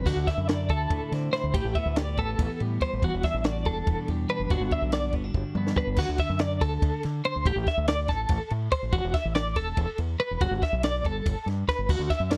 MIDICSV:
0, 0, Header, 1, 5, 480
1, 0, Start_track
1, 0, Tempo, 422535
1, 68, Time_signature, 7, 3, 24, 8
1, 14053, End_track
2, 0, Start_track
2, 0, Title_t, "Clean electric guitar"
2, 0, Program_c, 0, 27
2, 72, Note_on_c, 0, 66, 77
2, 311, Note_off_c, 0, 66, 0
2, 311, Note_on_c, 0, 76, 72
2, 543, Note_off_c, 0, 76, 0
2, 543, Note_on_c, 0, 74, 78
2, 787, Note_off_c, 0, 74, 0
2, 795, Note_on_c, 0, 69, 81
2, 1274, Note_off_c, 0, 69, 0
2, 1509, Note_on_c, 0, 72, 81
2, 1748, Note_on_c, 0, 67, 78
2, 1751, Note_off_c, 0, 72, 0
2, 1990, Note_on_c, 0, 76, 71
2, 1991, Note_off_c, 0, 67, 0
2, 2229, Note_off_c, 0, 76, 0
2, 2229, Note_on_c, 0, 74, 82
2, 2471, Note_off_c, 0, 74, 0
2, 2485, Note_on_c, 0, 69, 80
2, 2960, Note_off_c, 0, 69, 0
2, 3204, Note_on_c, 0, 72, 76
2, 3439, Note_off_c, 0, 72, 0
2, 3456, Note_on_c, 0, 66, 84
2, 3682, Note_on_c, 0, 76, 74
2, 3685, Note_off_c, 0, 66, 0
2, 3924, Note_off_c, 0, 76, 0
2, 3924, Note_on_c, 0, 74, 88
2, 4159, Note_off_c, 0, 74, 0
2, 4161, Note_on_c, 0, 69, 81
2, 4638, Note_off_c, 0, 69, 0
2, 4883, Note_on_c, 0, 71, 75
2, 5118, Note_off_c, 0, 71, 0
2, 5124, Note_on_c, 0, 66, 77
2, 5359, Note_off_c, 0, 66, 0
2, 5366, Note_on_c, 0, 76, 77
2, 5598, Note_off_c, 0, 76, 0
2, 5603, Note_on_c, 0, 74, 80
2, 5838, Note_off_c, 0, 74, 0
2, 6561, Note_on_c, 0, 71, 77
2, 6796, Note_off_c, 0, 71, 0
2, 6801, Note_on_c, 0, 66, 84
2, 7036, Note_off_c, 0, 66, 0
2, 7039, Note_on_c, 0, 76, 78
2, 7271, Note_off_c, 0, 76, 0
2, 7271, Note_on_c, 0, 74, 86
2, 7510, Note_off_c, 0, 74, 0
2, 7514, Note_on_c, 0, 69, 84
2, 7991, Note_off_c, 0, 69, 0
2, 8239, Note_on_c, 0, 72, 85
2, 8473, Note_off_c, 0, 72, 0
2, 8484, Note_on_c, 0, 67, 85
2, 8716, Note_off_c, 0, 67, 0
2, 8723, Note_on_c, 0, 76, 82
2, 8949, Note_off_c, 0, 76, 0
2, 8954, Note_on_c, 0, 74, 78
2, 9190, Note_off_c, 0, 74, 0
2, 9190, Note_on_c, 0, 69, 82
2, 9668, Note_off_c, 0, 69, 0
2, 9905, Note_on_c, 0, 72, 82
2, 10141, Note_on_c, 0, 66, 92
2, 10145, Note_off_c, 0, 72, 0
2, 10382, Note_on_c, 0, 76, 78
2, 10383, Note_off_c, 0, 66, 0
2, 10618, Note_off_c, 0, 76, 0
2, 10622, Note_on_c, 0, 74, 90
2, 10864, Note_off_c, 0, 74, 0
2, 10864, Note_on_c, 0, 69, 80
2, 11345, Note_off_c, 0, 69, 0
2, 11585, Note_on_c, 0, 71, 85
2, 11826, Note_off_c, 0, 71, 0
2, 11830, Note_on_c, 0, 66, 93
2, 12068, Note_off_c, 0, 66, 0
2, 12077, Note_on_c, 0, 76, 81
2, 12312, Note_off_c, 0, 76, 0
2, 12319, Note_on_c, 0, 74, 77
2, 12553, Note_off_c, 0, 74, 0
2, 12565, Note_on_c, 0, 69, 77
2, 13037, Note_off_c, 0, 69, 0
2, 13277, Note_on_c, 0, 71, 79
2, 13513, Note_off_c, 0, 71, 0
2, 13518, Note_on_c, 0, 66, 83
2, 13747, Note_on_c, 0, 76, 75
2, 13754, Note_off_c, 0, 66, 0
2, 13979, Note_off_c, 0, 76, 0
2, 13979, Note_on_c, 0, 74, 80
2, 14053, Note_off_c, 0, 74, 0
2, 14053, End_track
3, 0, Start_track
3, 0, Title_t, "Clean electric guitar"
3, 0, Program_c, 1, 27
3, 67, Note_on_c, 1, 50, 74
3, 312, Note_on_c, 1, 64, 70
3, 562, Note_off_c, 1, 64, 0
3, 566, Note_on_c, 1, 64, 65
3, 798, Note_off_c, 1, 64, 0
3, 802, Note_on_c, 1, 64, 70
3, 1028, Note_on_c, 1, 45, 68
3, 1287, Note_on_c, 1, 60, 59
3, 1524, Note_off_c, 1, 64, 0
3, 1528, Note_on_c, 1, 64, 65
3, 1731, Note_off_c, 1, 60, 0
3, 1751, Note_off_c, 1, 45, 0
3, 1752, Note_off_c, 1, 50, 0
3, 1767, Note_on_c, 1, 45, 72
3, 2007, Note_on_c, 1, 59, 66
3, 2237, Note_off_c, 1, 64, 0
3, 2242, Note_on_c, 1, 67, 63
3, 2484, Note_off_c, 1, 59, 0
3, 2489, Note_on_c, 1, 59, 63
3, 2719, Note_on_c, 1, 40, 66
3, 2721, Note_off_c, 1, 45, 0
3, 2968, Note_on_c, 1, 55, 60
3, 3194, Note_off_c, 1, 59, 0
3, 3199, Note_on_c, 1, 59, 55
3, 3422, Note_off_c, 1, 40, 0
3, 3435, Note_on_c, 1, 40, 79
3, 3681, Note_off_c, 1, 59, 0
3, 3685, Note_on_c, 1, 62, 67
3, 3928, Note_off_c, 1, 67, 0
3, 3933, Note_on_c, 1, 66, 62
3, 4163, Note_off_c, 1, 62, 0
3, 4168, Note_on_c, 1, 62, 60
3, 4398, Note_on_c, 1, 47, 56
3, 4641, Note_off_c, 1, 55, 0
3, 4655, Note_on_c, 1, 55, 60
3, 4889, Note_off_c, 1, 62, 0
3, 4894, Note_on_c, 1, 62, 61
3, 5087, Note_off_c, 1, 47, 0
3, 5115, Note_off_c, 1, 40, 0
3, 5124, Note_off_c, 1, 55, 0
3, 5126, Note_on_c, 1, 43, 74
3, 5137, Note_on_c, 1, 50, 64
3, 5144, Note_on_c, 1, 59, 68
3, 5149, Note_off_c, 1, 62, 0
3, 5154, Note_on_c, 1, 62, 68
3, 5158, Note_off_c, 1, 66, 0
3, 5163, Note_on_c, 1, 66, 78
3, 5359, Note_off_c, 1, 62, 0
3, 5373, Note_on_c, 1, 62, 62
3, 5590, Note_off_c, 1, 66, 0
3, 5604, Note_on_c, 1, 66, 66
3, 5825, Note_off_c, 1, 59, 0
3, 5834, Note_off_c, 1, 62, 0
3, 5839, Note_on_c, 1, 59, 63
3, 5952, Note_off_c, 1, 59, 0
3, 5952, Note_on_c, 1, 62, 51
3, 6065, Note_off_c, 1, 43, 0
3, 6078, Note_on_c, 1, 43, 59
3, 6328, Note_on_c, 1, 59, 63
3, 6552, Note_off_c, 1, 62, 0
3, 6576, Note_on_c, 1, 62, 50
3, 6766, Note_off_c, 1, 43, 0
3, 6768, Note_off_c, 1, 66, 0
3, 6771, Note_off_c, 1, 59, 0
3, 6775, Note_off_c, 1, 62, 0
3, 8480, Note_off_c, 1, 50, 0
3, 14053, End_track
4, 0, Start_track
4, 0, Title_t, "Fingered electric bass"
4, 0, Program_c, 2, 33
4, 66, Note_on_c, 2, 38, 103
4, 159, Note_off_c, 2, 38, 0
4, 182, Note_on_c, 2, 38, 90
4, 277, Note_off_c, 2, 38, 0
4, 426, Note_on_c, 2, 42, 96
4, 789, Note_off_c, 2, 42, 0
4, 789, Note_on_c, 2, 38, 93
4, 974, Note_off_c, 2, 38, 0
4, 1030, Note_on_c, 2, 38, 88
4, 1123, Note_off_c, 2, 38, 0
4, 1270, Note_on_c, 2, 50, 86
4, 1455, Note_off_c, 2, 50, 0
4, 1629, Note_on_c, 2, 38, 84
4, 1723, Note_off_c, 2, 38, 0
4, 1745, Note_on_c, 2, 33, 105
4, 1840, Note_off_c, 2, 33, 0
4, 1870, Note_on_c, 2, 33, 98
4, 1963, Note_off_c, 2, 33, 0
4, 2108, Note_on_c, 2, 38, 108
4, 2467, Note_off_c, 2, 38, 0
4, 2467, Note_on_c, 2, 33, 92
4, 2654, Note_off_c, 2, 33, 0
4, 2709, Note_on_c, 2, 33, 90
4, 2803, Note_off_c, 2, 33, 0
4, 2959, Note_on_c, 2, 45, 93
4, 3141, Note_off_c, 2, 45, 0
4, 3330, Note_on_c, 2, 33, 85
4, 3416, Note_off_c, 2, 33, 0
4, 3433, Note_on_c, 2, 28, 100
4, 3525, Note_off_c, 2, 28, 0
4, 3560, Note_on_c, 2, 28, 92
4, 3650, Note_off_c, 2, 28, 0
4, 3795, Note_on_c, 2, 33, 104
4, 4151, Note_off_c, 2, 33, 0
4, 4151, Note_on_c, 2, 28, 92
4, 4337, Note_off_c, 2, 28, 0
4, 4395, Note_on_c, 2, 28, 97
4, 4487, Note_off_c, 2, 28, 0
4, 4639, Note_on_c, 2, 40, 92
4, 4821, Note_off_c, 2, 40, 0
4, 4993, Note_on_c, 2, 30, 76
4, 5086, Note_off_c, 2, 30, 0
4, 5115, Note_on_c, 2, 31, 108
4, 5207, Note_off_c, 2, 31, 0
4, 5230, Note_on_c, 2, 31, 106
4, 5324, Note_off_c, 2, 31, 0
4, 5473, Note_on_c, 2, 35, 97
4, 5829, Note_off_c, 2, 35, 0
4, 5829, Note_on_c, 2, 31, 99
4, 6014, Note_off_c, 2, 31, 0
4, 6067, Note_on_c, 2, 31, 87
4, 6161, Note_off_c, 2, 31, 0
4, 6304, Note_on_c, 2, 43, 93
4, 6491, Note_off_c, 2, 43, 0
4, 6668, Note_on_c, 2, 31, 83
4, 6762, Note_off_c, 2, 31, 0
4, 6787, Note_on_c, 2, 38, 99
4, 6881, Note_off_c, 2, 38, 0
4, 6914, Note_on_c, 2, 38, 97
4, 7005, Note_off_c, 2, 38, 0
4, 7151, Note_on_c, 2, 42, 95
4, 7507, Note_off_c, 2, 42, 0
4, 7507, Note_on_c, 2, 38, 90
4, 7692, Note_off_c, 2, 38, 0
4, 7747, Note_on_c, 2, 38, 101
4, 7840, Note_off_c, 2, 38, 0
4, 8005, Note_on_c, 2, 50, 91
4, 8183, Note_off_c, 2, 50, 0
4, 8360, Note_on_c, 2, 38, 78
4, 8448, Note_off_c, 2, 38, 0
4, 8467, Note_on_c, 2, 33, 108
4, 8560, Note_off_c, 2, 33, 0
4, 8584, Note_on_c, 2, 33, 102
4, 8678, Note_off_c, 2, 33, 0
4, 8831, Note_on_c, 2, 38, 104
4, 9184, Note_off_c, 2, 38, 0
4, 9184, Note_on_c, 2, 33, 99
4, 9369, Note_off_c, 2, 33, 0
4, 9425, Note_on_c, 2, 33, 107
4, 9518, Note_off_c, 2, 33, 0
4, 9669, Note_on_c, 2, 45, 99
4, 9852, Note_off_c, 2, 45, 0
4, 10026, Note_on_c, 2, 33, 85
4, 10118, Note_off_c, 2, 33, 0
4, 10135, Note_on_c, 2, 28, 116
4, 10231, Note_off_c, 2, 28, 0
4, 10270, Note_on_c, 2, 28, 98
4, 10361, Note_off_c, 2, 28, 0
4, 10508, Note_on_c, 2, 33, 106
4, 10861, Note_off_c, 2, 33, 0
4, 10861, Note_on_c, 2, 28, 91
4, 11047, Note_off_c, 2, 28, 0
4, 11104, Note_on_c, 2, 28, 98
4, 11196, Note_off_c, 2, 28, 0
4, 11341, Note_on_c, 2, 40, 88
4, 11527, Note_off_c, 2, 40, 0
4, 11710, Note_on_c, 2, 28, 92
4, 11800, Note_off_c, 2, 28, 0
4, 11826, Note_on_c, 2, 31, 110
4, 11918, Note_off_c, 2, 31, 0
4, 11937, Note_on_c, 2, 31, 111
4, 12033, Note_off_c, 2, 31, 0
4, 12183, Note_on_c, 2, 35, 107
4, 12548, Note_off_c, 2, 35, 0
4, 12548, Note_on_c, 2, 31, 100
4, 12732, Note_off_c, 2, 31, 0
4, 12790, Note_on_c, 2, 31, 93
4, 12881, Note_off_c, 2, 31, 0
4, 13019, Note_on_c, 2, 43, 85
4, 13207, Note_off_c, 2, 43, 0
4, 13388, Note_on_c, 2, 31, 81
4, 13480, Note_off_c, 2, 31, 0
4, 13506, Note_on_c, 2, 38, 105
4, 13599, Note_off_c, 2, 38, 0
4, 13620, Note_on_c, 2, 38, 106
4, 13716, Note_off_c, 2, 38, 0
4, 13857, Note_on_c, 2, 42, 107
4, 14053, Note_off_c, 2, 42, 0
4, 14053, End_track
5, 0, Start_track
5, 0, Title_t, "Drums"
5, 66, Note_on_c, 9, 36, 109
5, 73, Note_on_c, 9, 49, 93
5, 73, Note_on_c, 9, 55, 78
5, 179, Note_off_c, 9, 36, 0
5, 187, Note_off_c, 9, 49, 0
5, 187, Note_off_c, 9, 55, 0
5, 306, Note_on_c, 9, 36, 79
5, 313, Note_on_c, 9, 51, 70
5, 322, Note_on_c, 9, 38, 40
5, 419, Note_off_c, 9, 36, 0
5, 427, Note_off_c, 9, 51, 0
5, 436, Note_off_c, 9, 38, 0
5, 552, Note_on_c, 9, 51, 95
5, 561, Note_on_c, 9, 38, 114
5, 665, Note_off_c, 9, 51, 0
5, 674, Note_off_c, 9, 38, 0
5, 784, Note_on_c, 9, 36, 84
5, 787, Note_on_c, 9, 51, 64
5, 898, Note_off_c, 9, 36, 0
5, 901, Note_off_c, 9, 51, 0
5, 1026, Note_on_c, 9, 36, 116
5, 1027, Note_on_c, 9, 51, 97
5, 1140, Note_off_c, 9, 36, 0
5, 1141, Note_off_c, 9, 51, 0
5, 1276, Note_on_c, 9, 51, 70
5, 1285, Note_on_c, 9, 38, 34
5, 1389, Note_off_c, 9, 51, 0
5, 1399, Note_off_c, 9, 38, 0
5, 1519, Note_on_c, 9, 51, 71
5, 1528, Note_on_c, 9, 38, 38
5, 1633, Note_off_c, 9, 51, 0
5, 1642, Note_off_c, 9, 38, 0
5, 1749, Note_on_c, 9, 36, 104
5, 1752, Note_on_c, 9, 51, 105
5, 1862, Note_off_c, 9, 36, 0
5, 1865, Note_off_c, 9, 51, 0
5, 1988, Note_on_c, 9, 36, 82
5, 1988, Note_on_c, 9, 51, 84
5, 2102, Note_off_c, 9, 36, 0
5, 2102, Note_off_c, 9, 51, 0
5, 2228, Note_on_c, 9, 51, 103
5, 2237, Note_on_c, 9, 38, 119
5, 2342, Note_off_c, 9, 51, 0
5, 2351, Note_off_c, 9, 38, 0
5, 2470, Note_on_c, 9, 51, 81
5, 2471, Note_on_c, 9, 36, 77
5, 2584, Note_off_c, 9, 51, 0
5, 2585, Note_off_c, 9, 36, 0
5, 2713, Note_on_c, 9, 51, 113
5, 2714, Note_on_c, 9, 36, 114
5, 2826, Note_off_c, 9, 51, 0
5, 2827, Note_off_c, 9, 36, 0
5, 2955, Note_on_c, 9, 51, 76
5, 3068, Note_off_c, 9, 51, 0
5, 3190, Note_on_c, 9, 51, 70
5, 3194, Note_on_c, 9, 36, 76
5, 3303, Note_off_c, 9, 51, 0
5, 3307, Note_off_c, 9, 36, 0
5, 3435, Note_on_c, 9, 36, 106
5, 3438, Note_on_c, 9, 51, 96
5, 3549, Note_off_c, 9, 36, 0
5, 3551, Note_off_c, 9, 51, 0
5, 3671, Note_on_c, 9, 51, 78
5, 3676, Note_on_c, 9, 36, 88
5, 3680, Note_on_c, 9, 38, 35
5, 3785, Note_off_c, 9, 51, 0
5, 3790, Note_off_c, 9, 36, 0
5, 3794, Note_off_c, 9, 38, 0
5, 3909, Note_on_c, 9, 51, 95
5, 3918, Note_on_c, 9, 38, 120
5, 4022, Note_off_c, 9, 51, 0
5, 4031, Note_off_c, 9, 38, 0
5, 4148, Note_on_c, 9, 51, 64
5, 4155, Note_on_c, 9, 36, 84
5, 4261, Note_off_c, 9, 51, 0
5, 4268, Note_off_c, 9, 36, 0
5, 4396, Note_on_c, 9, 36, 121
5, 4396, Note_on_c, 9, 51, 98
5, 4509, Note_off_c, 9, 51, 0
5, 4510, Note_off_c, 9, 36, 0
5, 4634, Note_on_c, 9, 51, 65
5, 4748, Note_off_c, 9, 51, 0
5, 4873, Note_on_c, 9, 51, 74
5, 4987, Note_off_c, 9, 51, 0
5, 5114, Note_on_c, 9, 51, 93
5, 5116, Note_on_c, 9, 36, 107
5, 5227, Note_off_c, 9, 51, 0
5, 5229, Note_off_c, 9, 36, 0
5, 5353, Note_on_c, 9, 51, 76
5, 5354, Note_on_c, 9, 36, 82
5, 5467, Note_off_c, 9, 51, 0
5, 5468, Note_off_c, 9, 36, 0
5, 5589, Note_on_c, 9, 51, 101
5, 5598, Note_on_c, 9, 38, 113
5, 5702, Note_off_c, 9, 51, 0
5, 5712, Note_off_c, 9, 38, 0
5, 5822, Note_on_c, 9, 51, 76
5, 5830, Note_on_c, 9, 36, 84
5, 5936, Note_off_c, 9, 51, 0
5, 5943, Note_off_c, 9, 36, 0
5, 6071, Note_on_c, 9, 36, 114
5, 6184, Note_off_c, 9, 36, 0
5, 6304, Note_on_c, 9, 47, 71
5, 6418, Note_off_c, 9, 47, 0
5, 6437, Note_on_c, 9, 38, 72
5, 6547, Note_on_c, 9, 36, 94
5, 6551, Note_off_c, 9, 38, 0
5, 6660, Note_off_c, 9, 36, 0
5, 6776, Note_on_c, 9, 57, 121
5, 6786, Note_on_c, 9, 36, 105
5, 6889, Note_off_c, 9, 57, 0
5, 6899, Note_off_c, 9, 36, 0
5, 7021, Note_on_c, 9, 51, 88
5, 7027, Note_on_c, 9, 36, 80
5, 7134, Note_off_c, 9, 51, 0
5, 7141, Note_off_c, 9, 36, 0
5, 7258, Note_on_c, 9, 51, 105
5, 7267, Note_on_c, 9, 38, 117
5, 7371, Note_off_c, 9, 51, 0
5, 7380, Note_off_c, 9, 38, 0
5, 7509, Note_on_c, 9, 36, 85
5, 7510, Note_on_c, 9, 51, 78
5, 7623, Note_off_c, 9, 36, 0
5, 7623, Note_off_c, 9, 51, 0
5, 7750, Note_on_c, 9, 36, 116
5, 7751, Note_on_c, 9, 51, 107
5, 7863, Note_off_c, 9, 36, 0
5, 7864, Note_off_c, 9, 51, 0
5, 7987, Note_on_c, 9, 51, 71
5, 7996, Note_on_c, 9, 38, 34
5, 8101, Note_off_c, 9, 51, 0
5, 8110, Note_off_c, 9, 38, 0
5, 8230, Note_on_c, 9, 51, 77
5, 8344, Note_off_c, 9, 51, 0
5, 8470, Note_on_c, 9, 36, 114
5, 8474, Note_on_c, 9, 51, 91
5, 8583, Note_off_c, 9, 36, 0
5, 8587, Note_off_c, 9, 51, 0
5, 8709, Note_on_c, 9, 36, 89
5, 8710, Note_on_c, 9, 51, 77
5, 8719, Note_on_c, 9, 38, 42
5, 8823, Note_off_c, 9, 36, 0
5, 8823, Note_off_c, 9, 51, 0
5, 8832, Note_off_c, 9, 38, 0
5, 8947, Note_on_c, 9, 51, 106
5, 8956, Note_on_c, 9, 38, 127
5, 9061, Note_off_c, 9, 51, 0
5, 9070, Note_off_c, 9, 38, 0
5, 9180, Note_on_c, 9, 51, 77
5, 9184, Note_on_c, 9, 36, 88
5, 9189, Note_on_c, 9, 38, 36
5, 9294, Note_off_c, 9, 51, 0
5, 9298, Note_off_c, 9, 36, 0
5, 9303, Note_off_c, 9, 38, 0
5, 9413, Note_on_c, 9, 51, 110
5, 9422, Note_on_c, 9, 36, 120
5, 9526, Note_off_c, 9, 51, 0
5, 9535, Note_off_c, 9, 36, 0
5, 9660, Note_on_c, 9, 51, 79
5, 9773, Note_off_c, 9, 51, 0
5, 9900, Note_on_c, 9, 51, 86
5, 9902, Note_on_c, 9, 36, 78
5, 10013, Note_off_c, 9, 51, 0
5, 10016, Note_off_c, 9, 36, 0
5, 10138, Note_on_c, 9, 51, 108
5, 10140, Note_on_c, 9, 36, 110
5, 10252, Note_off_c, 9, 51, 0
5, 10253, Note_off_c, 9, 36, 0
5, 10379, Note_on_c, 9, 51, 88
5, 10381, Note_on_c, 9, 36, 79
5, 10388, Note_on_c, 9, 38, 40
5, 10492, Note_off_c, 9, 51, 0
5, 10495, Note_off_c, 9, 36, 0
5, 10502, Note_off_c, 9, 38, 0
5, 10620, Note_on_c, 9, 51, 109
5, 10630, Note_on_c, 9, 38, 125
5, 10734, Note_off_c, 9, 51, 0
5, 10743, Note_off_c, 9, 38, 0
5, 10857, Note_on_c, 9, 51, 82
5, 10861, Note_on_c, 9, 36, 83
5, 10971, Note_off_c, 9, 51, 0
5, 10974, Note_off_c, 9, 36, 0
5, 11099, Note_on_c, 9, 51, 122
5, 11100, Note_on_c, 9, 36, 121
5, 11212, Note_off_c, 9, 51, 0
5, 11214, Note_off_c, 9, 36, 0
5, 11337, Note_on_c, 9, 51, 73
5, 11451, Note_off_c, 9, 51, 0
5, 11582, Note_on_c, 9, 51, 80
5, 11696, Note_off_c, 9, 51, 0
5, 11823, Note_on_c, 9, 36, 110
5, 11825, Note_on_c, 9, 51, 98
5, 11937, Note_off_c, 9, 36, 0
5, 11938, Note_off_c, 9, 51, 0
5, 12064, Note_on_c, 9, 36, 79
5, 12068, Note_on_c, 9, 51, 78
5, 12077, Note_on_c, 9, 38, 41
5, 12178, Note_off_c, 9, 36, 0
5, 12182, Note_off_c, 9, 51, 0
5, 12191, Note_off_c, 9, 38, 0
5, 12304, Note_on_c, 9, 51, 111
5, 12313, Note_on_c, 9, 38, 111
5, 12418, Note_off_c, 9, 51, 0
5, 12427, Note_off_c, 9, 38, 0
5, 12548, Note_on_c, 9, 36, 87
5, 12551, Note_on_c, 9, 51, 74
5, 12661, Note_off_c, 9, 36, 0
5, 12665, Note_off_c, 9, 51, 0
5, 12789, Note_on_c, 9, 36, 111
5, 12792, Note_on_c, 9, 51, 104
5, 12902, Note_off_c, 9, 36, 0
5, 12906, Note_off_c, 9, 51, 0
5, 13036, Note_on_c, 9, 51, 69
5, 13045, Note_on_c, 9, 38, 34
5, 13150, Note_off_c, 9, 51, 0
5, 13159, Note_off_c, 9, 38, 0
5, 13270, Note_on_c, 9, 36, 72
5, 13279, Note_on_c, 9, 51, 78
5, 13288, Note_on_c, 9, 38, 38
5, 13383, Note_off_c, 9, 36, 0
5, 13393, Note_off_c, 9, 51, 0
5, 13402, Note_off_c, 9, 38, 0
5, 13508, Note_on_c, 9, 36, 113
5, 13509, Note_on_c, 9, 49, 107
5, 13621, Note_off_c, 9, 36, 0
5, 13622, Note_off_c, 9, 49, 0
5, 13747, Note_on_c, 9, 36, 81
5, 13748, Note_on_c, 9, 51, 83
5, 13757, Note_on_c, 9, 38, 38
5, 13860, Note_off_c, 9, 36, 0
5, 13862, Note_off_c, 9, 51, 0
5, 13871, Note_off_c, 9, 38, 0
5, 13980, Note_on_c, 9, 51, 114
5, 13989, Note_on_c, 9, 38, 114
5, 14053, Note_off_c, 9, 38, 0
5, 14053, Note_off_c, 9, 51, 0
5, 14053, End_track
0, 0, End_of_file